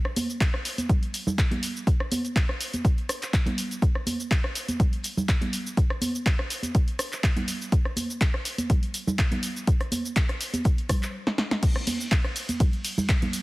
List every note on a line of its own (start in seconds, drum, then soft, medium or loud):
0.05 cross-stick medium
0.05 maracas soft
0.16 open hi-hat loud
0.16 high conga loud
0.16 maracas medium
0.16 shaker medium
0.29 maracas soft
0.29 shaker soft
0.41 kick loud
0.41 clap loud
0.41 closed hi-hat medium
0.41 shaker soft
0.54 cross-stick medium
0.54 maracas soft
0.65 open hi-hat loud
0.65 maracas medium
0.65 shaker medium
0.78 closed hi-hat medium
0.78 high conga medium
0.78 maracas soft
0.78 shaker soft
0.89 kick loud
0.89 closed hi-hat medium
0.89 low conga medium
0.89 maracas soft
0.89 shaker soft
1.03 closed hi-hat soft
1.03 maracas soft
1.14 open hi-hat loud
1.14 maracas loud
1.14 shaker medium
1.26 low conga loud
1.26 maracas soft
1.26 shaker soft
1.38 kick loud
1.38 clap loud
1.38 closed hi-hat medium
1.38 shaker soft
1.51 closed hi-hat soft
1.51 high conga loud
1.51 low conga medium
1.51 maracas soft
1.62 open hi-hat loud
1.62 maracas medium
1.62 shaker medium
1.76 maracas soft
1.76 shaker soft
1.87 kick loud
1.87 closed hi-hat medium
1.87 shaker soft
2.00 cross-stick medium
2.00 maracas soft
2.11 open hi-hat loud
2.11 high conga medium
2.11 maracas medium
2.11 shaker medium
2.24 closed hi-hat soft
2.24 maracas soft
2.24 shaker soft
2.36 kick loud
2.36 clap loud
2.36 closed hi-hat medium
2.36 shaker soft
2.48 cross-stick medium
2.48 maracas soft
2.60 open hi-hat loud
2.60 maracas medium
2.60 shaker medium
2.73 closed hi-hat medium
2.73 high conga medium
2.73 maracas soft
2.73 shaker soft
2.84 kick loud
2.84 closed hi-hat medium
2.84 maracas soft
2.84 shaker soft
2.98 closed hi-hat soft
2.98 maracas soft
3.09 cross-stick medium
3.09 open hi-hat loud
3.09 maracas medium
3.09 shaker medium
3.22 clap soft
3.22 closed hi-hat soft
3.22 maracas soft
3.22 shaker soft
3.33 kick loud
3.33 clap loud
3.33 closed hi-hat medium
3.33 shaker soft
3.46 closed hi-hat soft
3.46 high conga medium
3.46 low conga loud
3.46 maracas soft
3.57 open hi-hat loud
3.57 maracas medium
3.57 shaker medium
3.71 closed hi-hat soft
3.71 maracas soft
3.71 shaker soft
3.82 kick loud
3.82 closed hi-hat medium
3.82 maracas soft
3.82 shaker soft
3.95 cross-stick medium
3.95 maracas soft
4.06 open hi-hat loud
4.06 high conga loud
4.06 maracas medium
4.06 shaker medium
4.20 maracas soft
4.20 shaker soft
4.31 kick loud
4.31 clap loud
4.31 closed hi-hat medium
4.31 shaker soft
4.44 cross-stick medium
4.44 maracas soft
4.55 open hi-hat loud
4.55 maracas medium
4.55 shaker medium
4.68 closed hi-hat soft
4.68 high conga medium
4.68 maracas soft
4.68 shaker soft
4.80 kick loud
4.80 closed hi-hat medium
4.80 low conga medium
4.80 maracas soft
4.80 shaker soft
4.93 closed hi-hat soft
4.93 maracas soft
5.03 open hi-hat loud
5.03 maracas medium
5.03 shaker medium
5.17 low conga medium
5.17 maracas soft
5.17 shaker soft
5.29 kick loud
5.29 clap loud
5.29 closed hi-hat medium
5.29 shaker soft
5.41 closed hi-hat medium
5.41 high conga medium
5.41 low conga medium
5.41 maracas soft
5.53 open hi-hat loud
5.53 maracas medium
5.53 shaker medium
5.67 maracas soft
5.67 shaker soft
5.77 kick loud
5.77 closed hi-hat medium
5.77 shaker soft
5.77 maracas soft
5.90 cross-stick medium
5.90 maracas soft
6.01 open hi-hat loud
6.01 high conga medium
6.01 maracas medium
6.01 shaker medium
6.15 maracas soft
6.15 shaker soft
6.26 kick loud
6.26 clap loud
6.26 closed hi-hat medium
6.26 shaker soft
6.39 cross-stick medium
6.39 maracas soft
6.50 open hi-hat loud
6.50 maracas medium
6.50 shaker medium
6.63 closed hi-hat medium
6.63 high conga medium
6.63 shaker soft
6.63 maracas soft
6.75 kick loud
6.75 closed hi-hat medium
6.75 maracas medium
6.75 shaker soft
6.88 closed hi-hat soft
6.88 maracas soft
6.99 cross-stick medium
6.99 open hi-hat loud
6.99 maracas medium
6.99 shaker medium
7.13 clap soft
7.13 shaker soft
7.13 maracas soft
7.24 kick loud
7.24 clap loud
7.24 closed hi-hat medium
7.24 shaker soft
7.36 closed hi-hat medium
7.36 high conga medium
7.36 low conga medium
7.36 maracas soft
7.48 open hi-hat loud
7.48 maracas loud
7.48 shaker medium
7.61 maracas soft
7.61 shaker soft
7.72 kick loud
7.72 closed hi-hat medium
7.72 maracas medium
7.72 shaker soft
7.85 cross-stick medium
7.85 maracas soft
7.96 open hi-hat loud
7.96 high conga medium
7.96 maracas medium
7.96 shaker medium
8.10 maracas soft
8.10 shaker soft
8.21 kick loud
8.21 clap loud
8.21 closed hi-hat medium
8.21 shaker soft
8.34 cross-stick medium
8.34 maracas soft
8.45 open hi-hat loud
8.45 shaker medium
8.45 maracas medium
8.58 closed hi-hat medium
8.58 high conga medium
8.58 shaker soft
8.58 maracas soft
8.70 kick loud
8.70 closed hi-hat medium
8.70 low conga medium
8.70 maracas medium
8.70 shaker soft
8.83 closed hi-hat soft
8.83 maracas soft
8.94 open hi-hat loud
8.94 maracas loud
8.94 shaker medium
9.07 low conga medium
9.07 shaker soft
9.07 maracas soft
9.19 kick loud
9.19 clap loud
9.19 closed hi-hat medium
9.19 shaker soft
9.31 closed hi-hat medium
9.31 high conga medium
9.31 low conga loud
9.31 maracas soft
9.43 open hi-hat loud
9.43 maracas medium
9.43 shaker medium
9.56 maracas soft
9.56 shaker soft
9.67 kick loud
9.67 closed hi-hat medium
9.67 maracas soft
9.67 shaker soft
9.80 cross-stick medium
9.80 closed hi-hat soft
9.80 maracas soft
9.92 open hi-hat loud
9.92 high conga medium
9.92 maracas loud
9.92 shaker medium
10.05 maracas soft
10.05 shaker soft
10.16 kick loud
10.16 clap loud
10.16 closed hi-hat medium
10.16 maracas medium
10.16 shaker soft
10.29 cross-stick medium
10.29 closed hi-hat soft
10.29 maracas soft
10.41 open hi-hat loud
10.41 maracas medium
10.41 shaker medium
10.54 closed hi-hat medium
10.54 high conga medium
10.54 maracas soft
10.54 shaker soft
10.64 kick loud
10.64 closed hi-hat medium
10.64 maracas medium
10.64 shaker soft
10.78 closed hi-hat soft
10.78 maracas soft
10.89 kick medium
10.89 cross-stick medium
10.89 open hi-hat loud
10.89 low conga medium
10.89 maracas medium
10.89 shaker medium
11.03 clap soft
11.03 maracas soft
11.03 shaker soft
11.27 snare medium
11.38 snare medium
11.51 snare medium
11.63 kick loud
11.63 closed hi-hat medium
11.63 crash loud
11.63 ride medium
11.63 maracas medium
11.63 shaker soft
11.76 cross-stick medium
11.76 maracas soft
11.87 open hi-hat loud
11.87 ride medium
11.87 high conga medium
11.87 shaker medium
11.87 maracas medium
12.00 maracas soft
12.00 shaker soft
12.11 kick loud
12.11 clap loud
12.11 closed hi-hat medium
12.11 ride medium
12.11 maracas medium
12.11 shaker soft
12.24 cross-stick medium
12.24 maracas soft
12.36 open hi-hat loud
12.36 ride medium
12.36 shaker medium
12.36 maracas loud
12.48 closed hi-hat medium
12.48 high conga medium
12.48 maracas soft
12.48 shaker soft
12.60 kick loud
12.60 closed hi-hat medium
12.60 ride medium
12.60 low conga medium
12.60 maracas medium
12.60 shaker soft
12.73 closed hi-hat soft
12.73 maracas soft
12.84 open hi-hat loud
12.84 ride medium
12.84 maracas medium
12.84 shaker medium
12.98 low conga medium
12.98 maracas soft
12.98 shaker soft
13.09 kick loud
13.09 clap loud
13.09 closed hi-hat medium
13.09 ride medium
13.09 shaker soft
13.09 maracas medium
13.22 closed hi-hat medium
13.22 high conga loud
13.22 low conga loud
13.22 maracas soft
13.33 open hi-hat loud
13.33 ride medium
13.33 maracas loud
13.33 shaker medium